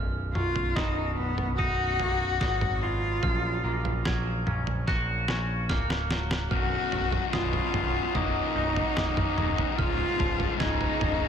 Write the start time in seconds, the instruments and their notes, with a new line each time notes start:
Already playing: picked electric bass B0, clean electric guitar B1, glockenspiel F6
0.34 picked electric bass B0, clean electric guitar F#3, cello F4, mid tom
0.56 floor tom
0.76 picked electric bass B0, clean electric guitar B2, cello D#4, glockenspiel D#6, kick, snare
1.17 picked electric bass B0, cello B3
1.38 floor tom
1.58 picked electric bass B0, clean electric guitar D#4, cello F#4, glockenspiel D#6, kick
2.00 picked electric bass B0, clean electric guitar A#3, floor tom
2.40 picked electric bass G#1, clean electric guitar F#3, glockenspiel D#6, kick, snare
2.61 floor tom, mid tom
2.82 clean electric guitar B2, cello F4
3.23 picked electric bass A#1, clean electric guitar F#2, glockenspiel F6, kick, floor tom
3.64 picked electric bass A#1, clean electric guitar A#3
3.85 floor tom
4.05 picked electric bass A#1, clean electric guitar F#3, glockenspiel G#6, kick, snare
4.47 picked electric bass A#1, clean electric guitar C#4, mid tom
4.67 floor tom
4.87 picked electric bass A#1, clean electric guitar F#4, glockenspiel F#6, kick, snare
5.28 picked electric bass A#1, clean electric guitar C#4, snare
5.69 picked electric bass C#1, clean electric guitar A#3, glockenspiel F6, kick, snare
5.90 snare
6.11 clean electric guitar F#3, snare
6.31 snare
6.51 picked electric bass B0, distorted electric guitar B1 F#2, clean electric guitar B1, cello F#4, glockenspiel F6, kick, floor tom
6.58 distorted electric guitar B1 F#2
6.65 distorted electric guitar B1 F#2
6.74 distorted electric guitar B1 F#2
6.81 distorted electric guitar B1 F#2
6.90 picked electric bass B0, distorted electric guitar B1 F#2, clean electric guitar F#3, floor tom
6.97 distorted electric guitar B1 F#2
7.04 distorted electric guitar B1 F#2
7.11 distorted electric guitar B1 F#2, floor tom
7.19 distorted electric guitar B1 F#2
7.27 distorted electric guitar B1 F#2
7.33 picked electric bass B0, distorted electric guitar B1 F#2, clean electric guitar B2, cello F4, glockenspiel D#6, snare, floor tom
7.42 distorted electric guitar B1 F#2
7.50 distorted electric guitar B1 F#2, floor tom
7.57 distorted electric guitar B1 F#2
7.65 distorted electric guitar B1 F#2
7.73 picked electric bass B0, distorted electric guitar B1 F#2, clean electric guitar F#3, floor tom, mid tom
7.81 distorted electric guitar B1 F#2
7.88 distorted electric guitar B1 F#2
7.96 distorted electric guitar B1 F#2
8.03 distorted electric guitar B1 F#2
8.11 picked electric bass B0, distorted electric guitar B1 F#2, glockenspiel D#6, kick, floor tom
8.15 distorted electric guitar B1, clean electric guitar A#3, cello D#4
8.20 distorted electric guitar F#2
8.26 distorted electric guitar B1 F#2
8.34 distorted electric guitar B1 F#2
8.41 distorted electric guitar B1 F#2
8.50 distorted electric guitar B1 F#2
8.56 picked electric bass B0, distorted electric guitar B1 F#2, clean electric guitar D#4
8.64 distorted electric guitar B1 F#2
8.72 distorted electric guitar B1 F#2
8.76 distorted electric guitar B1, floor tom
8.81 distorted electric guitar F#2
8.88 distorted electric guitar B1 F#2
8.95 picked electric bass B0, distorted electric guitar B1 F#2, clean electric guitar A#3, glockenspiel D#6, snare, mid tom
9.03 distorted electric guitar B1 F#2
9.10 distorted electric guitar B1 F#2
9.17 distorted electric guitar B1 F#2, floor tom, mid tom
9.24 distorted electric guitar B1 F#2
9.32 distorted electric guitar B1 F#2
9.37 picked electric bass D#1, distorted electric guitar B1, clean electric guitar F#3, mid tom
9.41 distorted electric guitar F#2
9.48 distorted electric guitar B1 F#2
9.55 distorted electric guitar B1 F#2, floor tom
9.63 distorted electric guitar B1 F#2
9.71 distorted electric guitar B1 F#2
9.78 picked electric bass C#1, distorted electric guitar C#2 G#2, clean electric guitar C#2, cello F4, glockenspiel F6, kick, floor tom
9.86 distorted electric guitar C#2 G#2
9.93 distorted electric guitar C#2 G#2
10.01 distorted electric guitar C#2 G#2
10.08 distorted electric guitar C#2 G#2
10.16 picked electric bass C#1, distorted electric guitar C#2 G#2, clean electric guitar F3, kick
10.20 floor tom
10.24 distorted electric guitar C#2 G#2
10.30 distorted electric guitar C#2 G#2
10.39 distorted electric guitar C#2 G#2, floor tom
10.46 distorted electric guitar C#2 G#2
10.54 distorted electric guitar C#2 G#2
10.60 picked electric bass C#1, distorted electric guitar C#2, clean electric guitar C#3, cello D#4, glockenspiel G#6, snare, floor tom
10.64 distorted electric guitar G#2
10.70 distorted electric guitar C#2 G#2
10.78 distorted electric guitar C#2 G#2, floor tom
10.84 distorted electric guitar C#2 G#2
10.93 distorted electric guitar C#2 G#2
11.00 picked electric bass C#1, distorted electric guitar C#2 G#2, clean electric guitar F3, floor tom, mid tom
11.07 distorted electric guitar C#2 G#2
11.15 distorted electric guitar C#2
11.19 distorted electric guitar C#2 G#2